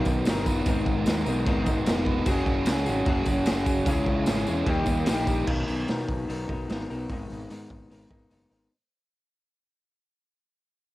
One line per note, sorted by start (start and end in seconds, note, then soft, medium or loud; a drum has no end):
0.00 0.25 B2 medium
0.00 0.26 D#3 loud
0.00 0.26 F#3 loud
0.00 0.27 B3 medium
0.00 0.28 D#4 medium
0.05 0.23 B1 loud
0.05 0.27 B3 medium
0.05 0.27 D#4 medium
0.05 0.29 A#4 medium
0.05 kick medium
0.05 tambourine medium
0.09 0.26 F#3 medium
0.25 0.61 G1 loud
0.25 0.65 F#3 medium
0.25 0.66 B3 medium
0.25 0.66 D#4 medium
0.25 snare loud
0.25 tambourine loud
0.25 crash medium
0.30 0.67 A#4 medium
0.46 0.66 F#3 medium
0.46 0.66 B3 medium
0.46 0.66 D#4 medium
0.46 0.65 B4 medium
0.46 kick medium
0.46 tambourine medium
0.66 0.83 G#1 loud
0.66 1.26 G#2 loud
0.66 1.26 D#3 loud
0.66 1.05 G#3 loud
0.66 1.06 B3 loud
0.66 1.07 D#4 loud
0.66 1.07 A#4 loud
0.66 kick loud
0.66 tambourine medium
0.66 crash medium
0.86 1.04 G#1 loud
0.86 kick medium
0.86 tambourine soft
1.06 1.23 D#2 medium
1.06 1.28 G#3 medium
1.06 1.26 B3 medium
1.06 1.26 D#4 medium
1.06 1.24 A#4 medium
1.06 snare loud
1.06 tambourine loud
1.06 crash medium
1.25 1.43 B1 medium
1.25 1.47 G#3 medium
1.25 1.47 B3 medium
1.25 1.48 D#4 medium
1.25 1.48 A#4 medium
1.25 tambourine medium
1.46 1.64 G#1 medium
1.46 1.86 G#2 loud
1.46 1.87 D#3 loud
1.46 1.70 G#3 loud
1.46 1.68 B3 loud
1.46 1.67 D#4 loud
1.46 1.66 A#4 loud
1.46 kick loud
1.46 tambourine soft
1.46 crash medium
1.66 1.84 G#1 medium
1.66 1.86 G#3 medium
1.66 1.87 B3 medium
1.66 1.87 D#4 medium
1.66 1.88 A#4 medium
1.66 kick medium
1.66 tambourine medium
1.86 2.21 F1 medium
1.86 2.26 G#3 medium
1.86 2.26 B3 medium
1.86 2.26 D#4 medium
1.86 2.27 A#4 medium
1.86 snare loud
1.86 tambourine loud
1.86 crash medium
2.06 2.25 G#3 medium
2.06 2.26 B3 medium
2.06 2.25 D#4 medium
2.06 2.25 B4 medium
2.06 kick medium
2.26 2.44 F#1 loud
2.26 2.66 F#3 loud
2.26 2.67 C#4 loud
2.26 2.68 F#4 loud
2.26 2.68 G#4 loud
2.26 kick loud
2.26 tambourine loud
2.26 crash medium
2.46 2.63 F#1 medium
2.46 kick medium
2.46 tambourine soft
2.66 2.85 C#2 medium
2.66 3.05 F#3 medium
2.66 2.88 C#4 medium
2.66 2.88 F#4 medium
2.66 snare loud
2.66 tambourine loud
2.66 crash medium
2.70 2.85 G#4 medium
2.86 3.05 G#1 medium
2.86 3.06 C#4 medium
2.86 3.07 F#4 medium
2.86 3.08 G#4 medium
2.86 tambourine medium
3.06 3.23 F#1 loud
3.06 3.45 F#3 loud
3.06 3.28 C#4 loud
3.06 3.27 F#4 loud
3.06 3.26 G#4 loud
3.06 kick loud
3.06 tambourine soft
3.06 crash medium
3.26 3.44 F#1 loud
3.26 3.46 C#4 medium
3.26 3.47 F#4 medium
3.26 3.48 G#4 medium
3.26 kick medium
3.26 tambourine medium
3.46 3.82 F#1 medium
3.46 3.85 F#3 medium
3.46 3.86 C#4 medium
3.46 3.86 F#4 medium
3.46 3.87 G#4 loud
3.46 snare loud
3.46 tambourine loud
3.46 crash medium
3.65 3.85 C#4 medium
3.65 3.86 F#4 medium
3.65 3.85 G#4 medium
3.65 kick medium
3.65 tambourine loud
3.86 4.04 C#2 loud
3.86 4.47 C#3 loud
3.86 4.26 G#3 loud
3.86 4.27 C#4 loud
3.86 4.27 E4 loud
3.86 4.28 G#4 loud
3.86 kick loud
3.86 tambourine loud
3.86 crash medium
4.06 4.24 C#2 medium
4.06 kick medium
4.26 4.45 G#1 medium
4.26 4.66 G#3 medium
4.26 4.49 C#4 medium
4.26 4.48 E4 medium
4.26 4.46 G#4 medium
4.26 snare loud
4.26 tambourine loud
4.26 crash medium
4.47 4.65 E2 medium
4.47 4.67 C#4 medium
4.47 4.67 E4 medium
4.47 4.66 G#4 medium
4.47 tambourine medium
4.67 4.84 D#2 medium
4.67 5.07 D#3 loud
4.67 5.06 G3 medium
4.67 4.88 A#3 medium
4.67 4.88 D#4 loud
4.67 4.86 G4 loud
4.67 kick loud
4.67 tambourine soft
4.67 crash medium
4.86 5.04 D#2 loud
4.86 5.07 A#3 medium
4.86 5.07 D#4 medium
4.86 5.08 G4 medium
4.86 kick medium
4.86 tambourine loud
5.06 5.42 A#1 medium
5.06 5.46 G3 medium
5.06 5.46 A#3 medium
5.06 5.47 D#4 medium
5.06 5.47 G4 medium
5.06 snare loud
5.06 tambourine loud
5.06 crash medium
5.27 5.47 A#3 medium
5.27 5.47 D#4 medium
5.27 5.46 G4 medium
5.27 kick medium
5.27 tambourine medium
5.47 5.63 B1 medium
5.47 5.86 B2 medium
5.47 5.87 D#3 medium
5.47 5.88 F#3 medium
5.47 5.88 B3 loud
5.47 5.89 D#4 medium
5.47 5.90 A#4 loud
5.47 kick loud
5.47 crash loud
5.68 5.84 B1 medium
5.68 open hi-hat medium
5.87 6.48 B2 medium
5.87 6.04 B2 medium
5.87 6.48 D#3 medium
5.87 6.27 F#3 medium
5.87 6.28 B3 medium
5.87 6.29 D#4 medium
5.87 6.30 A#4 medium
5.87 snare medium
5.87 open hi-hat medium
6.09 6.24 B1 medium
6.09 kick medium
6.09 open hi-hat soft
6.28 6.44 B1 medium
6.28 6.50 F#3 medium
6.28 6.50 B3 medium
6.28 6.49 D#4 medium
6.28 6.47 A#4 medium
6.28 open hi-hat medium
6.48 6.64 B1 medium
6.48 6.67 F#3 medium
6.48 6.69 B3 medium
6.48 6.70 D#4 medium
6.48 6.71 A#4 medium
6.48 kick medium
6.48 open hi-hat soft
6.68 6.85 G#1 medium
6.68 6.91 F#3 medium
6.68 6.91 B3 medium
6.68 6.91 D#4 medium
6.68 6.90 A#4 medium
6.68 snare loud
6.68 open hi-hat medium
6.90 7.05 B1 medium
6.90 7.09 F#3 medium
6.90 7.11 B3 medium
6.90 7.12 D#4 medium
6.90 7.12 A#4 medium
6.90 open hi-hat soft
7.10 7.25 G#1 medium
7.10 7.48 G#2 loud
7.10 7.49 D#3 loud
7.10 7.50 G#3 medium
7.10 7.49 B3 medium
7.10 7.50 D#4 loud
7.10 7.50 A#4 loud
7.10 kick loud
7.10 open hi-hat medium
7.30 7.45 G#1 medium
7.30 open hi-hat soft
7.49 8.10 G#2 medium
7.49 7.65 G#2 medium
7.49 8.10 D#3 medium
7.49 7.89 G#3 medium
7.49 7.89 B3 medium
7.49 7.90 D#4 medium
7.49 7.91 A#4 medium
7.49 open hi-hat medium
7.70 7.85 G#1 medium
7.70 kick medium
7.90 8.05 G#1 medium
7.90 8.11 G#3 medium
7.90 8.10 B3 medium
7.90 8.10 D#4 medium
7.90 8.08 A#4 medium
7.90 open hi-hat medium
8.10 8.26 G#1 medium
8.10 8.29 G#3 soft
8.10 8.30 B3 medium
8.10 8.31 D#4 medium
8.10 8.31 A#4 medium
8.10 kick medium
8.10 open hi-hat medium
8.30 8.46 F#1 medium
8.30 8.52 G#3 medium
8.30 8.51 B3 medium
8.30 8.50 D#4 medium
8.30 8.49 A#4 medium
8.30 open hi-hat medium
8.50 8.66 G#1 medium
8.50 8.71 G#3 soft
8.50 8.70 B3 medium
8.50 8.70 D#4 medium
8.50 8.69 A#4 medium
8.50 open hi-hat soft